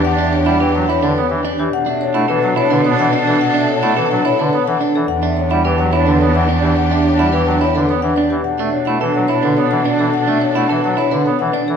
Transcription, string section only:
\new Staff \with { instrumentName = "String section" } { \time 3/4 \key b \minor \tempo 4 = 107 <d' g'>2~ <d' g'>8. r16 | <d' a'>2.~ | <d' a'>2~ <d' a'>8. r16 | <d' g'>2.~ |
<d' g'>2~ <d' g'>8. r16 | <d' a'>2.~ | <d' a'>2~ <d' a'>8. r16 | }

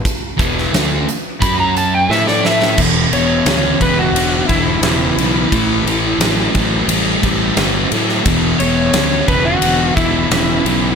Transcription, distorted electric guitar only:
\new Staff \with { instrumentName = "Distorted electric guitar" } { \clef bass \time 4/4 \key a \major \tempo 4 = 88 r8 <e, b, e>8 <d a d'>8 r8 <fis cis' fis'>4 <a e' a'>4 | <e, b,>8 <e, b,>8 <e, cis>8 <e, cis>8 <e, d>8 <e, d>8 <e, cis>8 <e, cis>8 | <a, e>8 <a, e>8 <a, fis>8 <a, fis>8 <a, g>8 <a, g>8 <a, fis>8 <a, fis>8 | <e, b,>8 <e, b,>8 <e, cis>8 <e, cis>8 <e, d>8 <e, d>8 <e, cis>8 <e, cis>8 | }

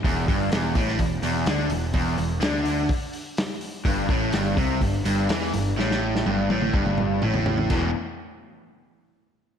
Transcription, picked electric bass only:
\new Staff \with { instrumentName = "Picked electric bass" } { \clef bass \time 4/4 \key e \minor \tempo 4 = 125 e,,8 g,,8 e,,8 a,,8 e,,8 e,,8 d,8 e,,8 | e,,8 e,,8 d,4 r2 | g,,8 a,,8 g,,8 c,8 g,,8 g,,8 e,8 g,,8 | a,,4 g,,8 a,,8 g,,4 a,,4 |
e,,8 r2. r8 | }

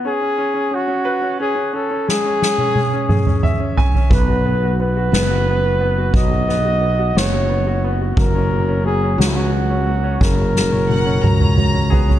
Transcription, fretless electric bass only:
\new Staff \with { instrumentName = "Fretless electric bass" } { \clef bass \time 6/8 \key b \mixolydian \tempo 4. = 59 r2. | r2. | b,,4. fis,,4. | b,,4. fis,,4. |
fis,,4. cis,4. | fis,,4. cis,4. | }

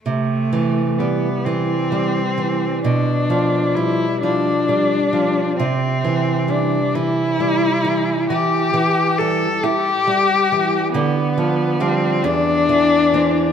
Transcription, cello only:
\new Staff \with { instrumentName = "Cello" } { \time 6/8 \key c \major \tempo 4. = 44 a4 b8 c'4. | d'4 e'8 d'4. | c'4 d'8 e'4. | g'4 a'8 g'4. |
b4 c'8 d'4. | }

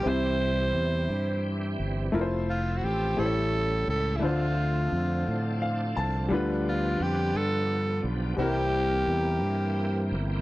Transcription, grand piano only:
<<
  \new Staff \with { instrumentName = "Grand piano" } { \time 6/8 \key c \mixolydian \tempo 4. = 58 <c' e' g' e''>2. | <a e' f' bes' c''>4. <a e' g' c'' cis''>4. | <a d' f' c''>2. | <g d' f' b'>2. |
<g c' e' bes'>2. | }
  \new Staff \with { instrumentName = "Grand piano" } { \clef bass \time 6/8 \key c \mixolydian c4. r4. | r4. a,4. | d4. r8 f''8 a''8 | d4. r4. |
c4. r4. | }
>>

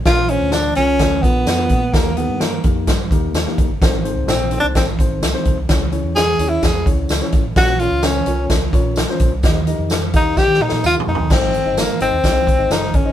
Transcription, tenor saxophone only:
\new Staff \with { instrumentName = "Tenor saxophone" } { \time 4/4 \key aes \major \tempo 4 = 128 f'8 des'8 d'8 des'4 ces'4. | bes8 ces'8 bes8 r2 r8 | r4 \tuplet 3/2 { c'4 d'8 } c'8 r4. | r4 \tuplet 3/2 { aes'4 fes'8 } aes'8 r4. |
ges'8 f'8 des'4 r2 | r4. ees'8 g'8 ees'8 f'8 ees'8 | c'4 bes8 c'4. ees'8 des'8 | }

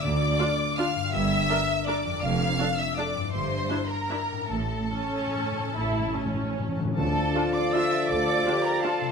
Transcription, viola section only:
\new Staff \with { instrumentName = "Viola section" } { \time 3/4 \key d \minor \tempo 4 = 159 r4 <d' f'>4 <d' f'>4 | r4 <d' bes'>4 <d' bes'>4 | r4 <d' a'>4 <d' a'>4 | r4 <d' e'>4 <d' e'>4 |
r4 cis'2 | e'4 cis'2 | r4 <d' f'>4 <d' f'>4 | r4 <d' f'>4 <d' f'>4 | }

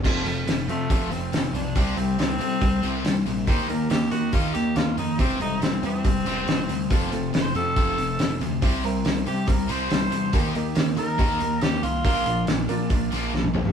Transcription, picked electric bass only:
\new Staff \with { instrumentName = "Picked electric bass" } { \clef bass \time 4/4 \key f \major \tempo 4 = 140 f,,8 f,,8 f,,8 f,8 f,,8 f,,8 f,,8 b,,8 | c,8 c,8 c,8 c8 c,8 c,8 c,8 bes,,8 | ees,8 ees,8 ees,8 ees8 ees,8 ees,8 ees,8 f,8 | e,,8 e,,8 e,,8 e,8 e,,8 e,,8 e,,8 d,8 |
f,,8 f,,8 f,,8 f,8 f,,8 f,,8 f,,8 d,8 | c,8 c,8 c,8 c8 c,8 c,8 c,8 e,8 | ees,8 ees,8 ees,8 ees8 ees,8 ees,8 ees,8 c,8 | bes,,8 bes,,8 bes,,8 bes,8 bes,,8 bes,,8 bes,,8 b,,8 | }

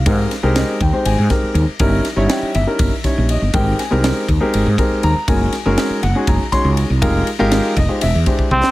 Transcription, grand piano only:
\new Staff \with { instrumentName = "Grand piano" } { \time 7/8 \key aes \lydian \tempo 4 = 121 << { f''4 ees''8 g''8 aes''8 r4 | r4 <ges'' g''>8 fes''4. ees''8 | g''8 aes''8 r2 bes''8 | aes''4. ges''8 bes''8 c'''8 r8 |
r4. ees''8 e''8 r4 | } \\ { <aes c' ees' g' bes'>8 r16 <aes c' ees' g' bes'>8. r16 <aes c' ees' g' c''>8 r16 <aes c' ees' g' bes'>8. r16 | <g des' ees' fes' bes'>8 r16 <g des' ees' fes' des''>8. r16 <g des' ees' fes' bes'>8 r16 <g des' ees' fes' des''>8. r16 | <aes c' ees' g' bes'>8 r16 <aes c' ees' g' bes'>8. r16 <aes c' ees' g' bes'>8 r16 <aes c' ees' g' bes'>8. r16 | <aes des' ees' ges' bes'>8 r16 <aes des' ees' ges' bes'>8. r16 <aes des' ees' ges' aes'>8 r16 <aes des' ees' ges' des''>8. r16 |
<aes ees' f' g' bes'>8 r16 <aes ees' f' g' bes'>8. r16 <aes ees' f' g' c''>16 r8 <gis d' e' g' bis'>8. r16 | } >> }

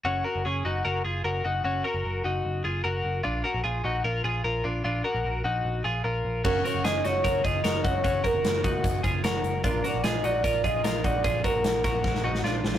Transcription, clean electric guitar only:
\new Staff \with { instrumentName = "Clean electric guitar" } { \time 4/4 \key fis \major \tempo 4 = 150 <cis' fis'>8 <fis' ais'>8 <cis' gis'>8 <dis' fis'>8 <fis' ais'>8 <eis' gis'>8 <fis' ais'>8 <dis' fis'>8 | <cis' fis'>8 <fis' ais'>4 <dis' fis'>4 <eis' gis'>8 <fis' ais'>4 | <d' eis'>8 <fis' ais'>8 <eis' gis'>8 <dis' fis'>8 <eis' ais'>8 <eis' gis'>8 <eis' ais'>8 <d' eis'>8 | <d' eis'>8 <fis' ais'>4 <dis' fis'>4 <eis' gis'>8 <eis' ais'>4 |
<cis' fis'>8 <fis' ais'>8 <cis' gis'>8 <dis' fis'>8 <fis' ais'>8 <eis' gis'>8 <fis' ais'>8 <dis' fis'>8 | <cis' fis'>8 <fis' ais'>4 <dis' fis'>4 <eis' gis'>8 <fis' ais'>4 | <d' eis'>8 <fis' ais'>8 <eis' gis'>8 <dis' fis'>8 <eis' ais'>8 <eis' gis'>8 <eis' ais'>8 <dis' fis'>8 | <eis' gis'>8 <fis' ais'>4 <fis' ais'>4 <dis' fis'>8 <d' eis'>4 | }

